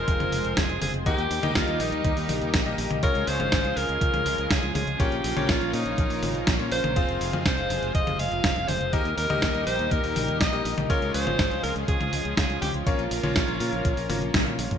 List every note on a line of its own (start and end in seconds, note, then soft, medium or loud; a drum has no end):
0.00 1.04 F3 medium
0.00 1.04 G#3 medium
0.00 1.03 C4 medium
0.00 1.04 C4 medium
0.00 1.03 F4 medium
0.00 1.03 G#4 medium
0.00 1.04 G#4 medium
0.00 0.59 A#4 loud
0.00 1.04 C5 medium
0.00 1.03 F5 medium
0.08 0.17 F1 loud
0.08 kick loud
0.08 closed hi-hat loud
0.20 0.30 F1 medium
0.20 closed hi-hat soft
0.20 high tom medium
0.32 0.42 F1 medium
0.32 open hi-hat loud
0.45 0.54 F1 medium
0.45 closed hi-hat soft
0.57 0.67 F1 loud
0.57 0.81 G#4 loud
0.57 kick loud
0.57 snare loud
0.57 closed hi-hat loud
0.69 0.79 F1 medium
0.69 closed hi-hat soft
0.81 0.91 F1 loud
0.81 0.93 G#4 loud
0.81 open hi-hat loud
0.81 high tom medium
0.94 1.03 F1 medium
0.94 closed hi-hat soft
1.06 1.16 D#2 loud
1.06 3.01 D#3 medium
1.06 3.01 G3 medium
1.06 1.21 A#3 loud
1.06 3.01 A#3 medium
1.06 1.21 D#4 medium
1.06 1.21 G4 medium
1.06 1.52 G4 loud
1.06 3.01 G4 medium
1.06 3.01 A#4 medium
1.06 1.21 D#5 loud
1.06 kick loud
1.06 closed hi-hat loud
1.18 1.28 D#2 medium
1.18 closed hi-hat soft
1.31 1.40 D#2 medium
1.31 open hi-hat loud
1.43 1.52 D#2 medium
1.43 2.64 A#3 loud
1.43 2.64 D#4 medium
1.43 2.64 G4 medium
1.43 2.64 D#5 loud
1.43 closed hi-hat soft
1.43 high tom medium
1.55 1.65 D#2 loud
1.55 1.82 F4 medium
1.55 kick loud
1.55 snare loud
1.55 closed hi-hat loud
1.67 1.77 D#2 medium
1.67 closed hi-hat soft
1.80 1.89 A#1 medium
1.80 2.54 D#4 medium
1.80 open hi-hat loud
1.92 2.02 D#2 medium
1.92 closed hi-hat soft
2.04 2.14 D#2 loud
2.04 kick loud
2.04 closed hi-hat loud
2.17 2.26 D#2 medium
2.17 open hi-hat medium
2.29 2.39 A#1 medium
2.29 open hi-hat loud
2.29 high tom medium
2.41 2.51 D#2 medium
2.41 closed hi-hat soft
2.54 2.63 A#1 loud
2.54 kick loud
2.54 snare loud
2.54 closed hi-hat loud
2.66 2.75 A#1 medium
2.66 3.00 A#3 medium
2.66 3.00 D#4 medium
2.66 3.00 G4 medium
2.66 3.00 D#5 medium
2.66 closed hi-hat soft
2.78 2.88 A#1 loud
2.78 open hi-hat loud
2.91 3.00 A#1 medium
2.91 closed hi-hat soft
2.91 high tom medium
3.03 3.12 C#2 loud
3.03 6.93 C#3 medium
3.03 8.89 F3 medium
3.03 3.37 G#3 loud
3.03 4.98 G#3 medium
3.03 3.37 C#4 medium
3.03 3.37 F4 medium
3.03 6.93 F4 medium
3.03 4.98 G#4 medium
3.03 3.29 A#4 loud
3.03 3.37 C#5 loud
3.03 kick loud
3.03 closed hi-hat loud
3.15 3.25 C#2 medium
3.15 closed hi-hat soft
3.27 3.37 C#2 loud
3.27 3.78 C5 loud
3.27 open hi-hat loud
3.40 3.49 G#1 medium
3.40 4.97 G#3 medium
3.40 4.97 C#4 medium
3.40 4.97 F4 medium
3.40 4.97 F5 medium
3.40 closed hi-hat soft
3.40 high tom medium
3.52 3.62 G#1 loud
3.52 kick loud
3.52 snare loud
3.52 closed hi-hat medium
3.64 3.74 C#2 medium
3.64 closed hi-hat soft
3.77 3.86 C#2 medium
3.77 4.52 A#4 loud
3.77 open hi-hat loud
3.89 3.98 C#2 medium
3.89 closed hi-hat soft
4.01 4.11 C#2 loud
4.01 kick loud
4.01 closed hi-hat loud
4.14 4.23 C#2 medium
4.14 closed hi-hat soft
4.14 high tom medium
4.26 4.35 C#2 medium
4.26 open hi-hat loud
4.38 4.48 C#2 medium
4.38 closed hi-hat soft
4.51 4.60 C#2 loud
4.51 4.75 G#4 loud
4.51 kick loud
4.51 snare loud
4.51 closed hi-hat loud
4.63 4.72 C#2 medium
4.63 closed hi-hat soft
4.75 4.85 C#2 loud
4.75 5.01 G#4 loud
4.75 open hi-hat loud
4.75 high tom medium
4.87 4.97 C#2 medium
4.87 closed hi-hat soft
5.00 5.09 A#1 loud
5.00 6.94 A#3 medium
5.00 5.15 A#3 loud
5.00 5.15 C#4 medium
5.00 5.15 F4 medium
5.00 5.51 G4 loud
5.00 6.94 A#4 medium
5.00 5.15 C#5 loud
5.00 kick loud
5.00 closed hi-hat loud
5.12 5.21 A#1 medium
5.12 closed hi-hat soft
5.24 5.34 A#1 loud
5.24 open hi-hat loud
5.37 5.46 A#1 medium
5.37 6.57 A#3 loud
5.37 6.57 C#4 medium
5.37 6.57 F4 medium
5.37 6.57 C#5 loud
5.37 closed hi-hat soft
5.37 high tom medium
5.49 5.58 A#1 loud
5.49 5.75 F4 loud
5.49 kick loud
5.49 snare loud
5.49 closed hi-hat medium
5.61 5.71 A#1 medium
5.61 closed hi-hat soft
5.73 5.83 A#2 loud
5.73 6.47 D#4 medium
5.73 open hi-hat loud
5.86 5.95 A#1 medium
5.86 closed hi-hat soft
5.98 6.08 A#1 loud
5.98 kick loud
5.98 closed hi-hat loud
6.10 6.20 A#1 medium
6.10 open hi-hat medium
6.22 6.32 G#1 medium
6.22 open hi-hat loud
6.22 high tom medium
6.35 6.44 A#1 medium
6.35 closed hi-hat soft
6.47 6.57 A#1 loud
6.47 kick loud
6.47 snare loud
6.47 closed hi-hat loud
6.59 6.69 A#2 medium
6.59 6.93 A#3 medium
6.59 6.93 C#4 medium
6.59 6.93 F4 medium
6.59 6.93 C#5 medium
6.59 closed hi-hat soft
6.72 6.81 A#1 loud
6.72 7.18 C5 loud
6.72 open hi-hat loud
6.84 6.93 A#1 medium
6.84 closed hi-hat soft
6.84 high tom medium
6.96 7.06 F1 loud
6.96 8.91 C3 medium
6.96 8.91 G#3 medium
6.96 7.30 C4 loud
6.96 7.30 F4 medium
6.96 8.91 F4 medium
6.96 7.30 G#4 medium
6.96 8.91 G#4 medium
6.96 7.30 F5 loud
6.96 kick loud
6.96 closed hi-hat medium
7.08 7.18 F1 medium
7.08 closed hi-hat soft
7.21 7.30 F1 medium
7.21 open hi-hat loud
7.33 7.43 F2 medium
7.33 8.90 C4 medium
7.33 8.90 F4 medium
7.33 8.90 G#4 medium
7.33 8.90 F5 medium
7.33 high tom medium
7.46 7.55 C2 loud
7.46 7.91 C5 loud
7.46 kick loud
7.46 snare loud
7.46 closed hi-hat medium
7.58 7.67 F1 medium
7.58 closed hi-hat soft
7.70 7.80 F1 medium
7.70 open hi-hat loud
7.82 7.92 F1 medium
7.82 closed hi-hat soft
7.95 8.04 F1 loud
7.95 8.21 D#5 loud
7.95 kick loud
7.95 closed hi-hat medium
8.07 8.16 F1 medium
8.07 closed hi-hat soft
8.07 high tom medium
8.19 8.29 F1 medium
8.19 8.70 F5 loud
8.19 open hi-hat loud
8.31 8.41 F1 medium
8.31 closed hi-hat soft
8.44 8.53 F1 loud
8.44 kick loud
8.44 snare loud
8.44 closed hi-hat medium
8.56 8.66 F1 medium
8.56 closed hi-hat soft
8.68 8.78 F1 loud
8.68 8.94 C5 loud
8.68 open hi-hat loud
8.68 high tom medium
8.81 8.90 F1 medium
8.81 closed hi-hat soft
8.93 9.03 D#2 loud
8.93 10.88 A#2 medium
8.93 10.88 D#3 medium
8.93 10.88 G3 medium
8.93 9.08 A#3 loud
8.93 9.08 D#4 medium
8.93 10.88 D#4 medium
8.93 9.08 G4 medium
8.93 10.88 G4 medium
8.93 9.17 A#4 loud
8.93 9.08 D#5 loud
8.93 kick loud
8.93 closed hi-hat medium
9.05 9.15 D#2 medium
9.05 closed hi-hat soft
9.17 9.27 D#2 medium
9.17 9.63 A#4 loud
9.17 open hi-hat loud
9.30 9.39 D#2 medium
9.30 10.50 A#3 loud
9.30 10.50 D#4 medium
9.30 10.50 G4 medium
9.30 10.50 D#5 loud
9.30 closed hi-hat soft
9.30 high tom medium
9.42 9.52 D#2 loud
9.42 kick loud
9.42 snare loud
9.42 closed hi-hat medium
9.54 9.64 D#2 medium
9.54 closed hi-hat soft
9.66 9.76 A#1 loud
9.66 9.93 C5 loud
9.66 open hi-hat loud
9.79 9.89 D#2 medium
9.79 closed hi-hat soft
9.91 10.01 D#2 loud
9.91 10.40 A#4 loud
9.91 kick loud
9.91 closed hi-hat medium
10.04 10.13 D#2 medium
10.04 open hi-hat medium
10.16 10.25 A#1 medium
10.16 open hi-hat loud
10.16 high tom medium
10.28 10.38 D#2 medium
10.28 closed hi-hat soft
10.40 10.50 A#1 loud
10.40 10.75 D#5 loud
10.40 kick loud
10.40 snare loud
10.40 closed hi-hat medium
10.53 10.62 A#1 medium
10.53 10.87 A#3 medium
10.53 10.87 D#4 medium
10.53 10.87 G4 medium
10.53 10.87 D#5 medium
10.53 closed hi-hat soft
10.65 10.75 A#1 medium
10.65 open hi-hat loud
10.78 10.87 A#1 medium
10.78 closed hi-hat soft
10.78 high tom medium
10.90 10.99 C#2 loud
10.90 14.78 C#3 medium
10.90 14.78 F3 medium
10.90 11.24 G#3 loud
10.90 12.85 G#3 medium
10.90 11.24 C#4 medium
10.90 11.24 F4 medium
10.90 14.78 F4 medium
10.90 12.85 G#4 medium
10.90 11.13 A#4 loud
10.90 11.24 C#5 loud
10.90 kick loud
10.90 closed hi-hat loud
11.02 11.12 C#2 medium
11.02 closed hi-hat soft
11.14 11.24 C#2 medium
11.14 11.60 C5 loud
11.14 open hi-hat loud
11.27 11.36 G#1 medium
11.27 12.84 G#3 medium
11.27 12.84 C#4 medium
11.27 12.84 F4 medium
11.27 12.84 F5 medium
11.27 high tom medium
11.39 11.48 G#1 loud
11.39 kick loud
11.39 snare loud
11.39 closed hi-hat medium
11.51 11.61 C#2 medium
11.51 closed hi-hat soft
11.63 11.73 C#2 loud
11.63 11.75 A#4 medium
11.63 open hi-hat loud
11.76 11.85 C#2 medium
11.76 closed hi-hat soft
11.88 11.98 C#2 loud
11.88 12.34 G#4 loud
11.88 kick loud
11.88 closed hi-hat loud
12.00 12.10 C#2 medium
12.00 closed hi-hat soft
12.00 high tom medium
12.13 12.22 C#2 medium
12.13 open hi-hat loud
12.25 12.35 C#2 medium
12.25 closed hi-hat soft
12.37 12.47 C#2 loud
12.37 12.60 G#4 medium
12.37 kick loud
12.37 snare loud
12.37 closed hi-hat medium
12.50 12.59 C#2 medium
12.50 closed hi-hat soft
12.62 12.71 C#2 loud
12.62 12.73 G4 medium
12.62 open hi-hat loud
12.62 high tom medium
12.74 12.84 C#2 medium
12.74 closed hi-hat soft
12.86 12.96 A#1 loud
12.86 13.02 A#3 loud
12.86 14.78 A#3 medium
12.86 13.02 C#4 medium
12.86 14.30 F4 medium
12.86 13.02 F4 medium
12.86 14.78 A#4 medium
12.86 13.02 C#5 loud
12.86 kick loud
12.86 closed hi-hat loud
12.99 13.08 A#1 medium
12.99 closed hi-hat soft
13.11 13.21 A#1 medium
13.11 open hi-hat loud
13.23 13.33 A#1 medium
13.23 14.07 A#3 loud
13.23 14.07 C#4 medium
13.23 14.07 F4 medium
13.23 14.07 C#5 loud
13.23 closed hi-hat soft
13.23 high tom medium
13.36 13.45 A#1 loud
13.36 kick loud
13.36 snare loud
13.36 closed hi-hat medium
13.48 13.58 A#1 medium
13.48 closed hi-hat soft
13.60 13.70 A#2 loud
13.60 open hi-hat loud
13.73 13.82 A#1 medium
13.73 closed hi-hat soft
13.85 13.94 A#1 loud
13.85 kick loud
13.85 closed hi-hat loud
13.97 14.07 A#1 medium
13.97 open hi-hat medium
14.10 14.19 G#1 medium
14.10 14.78 A#3 medium
14.10 14.78 C#4 medium
14.10 14.78 F4 medium
14.10 14.78 C#5 medium
14.10 open hi-hat loud
14.10 high tom medium
14.22 14.31 A#1 medium
14.22 closed hi-hat soft
14.34 14.44 A#1 loud
14.34 kick loud
14.34 snare loud
14.34 closed hi-hat loud
14.34 high tom medium
14.46 14.56 A#2 medium
14.46 closed hi-hat soft
14.46 high tom medium
14.59 14.68 A#1 loud
14.59 open hi-hat loud
14.71 14.78 A#1 medium
14.71 closed hi-hat soft
14.71 mid tom medium